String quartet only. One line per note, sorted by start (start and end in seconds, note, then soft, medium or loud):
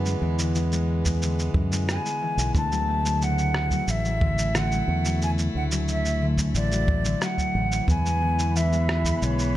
0.00 2.56 E3 medium
0.00 4.69 G#3 medium
0.00 3.99 B3 medium
2.70 9.57 E4 medium
2.84 7.88 A3 medium
7.89 9.57 E3 medium
8.17 9.57 B3 medium
9.10 9.57 G#3 medium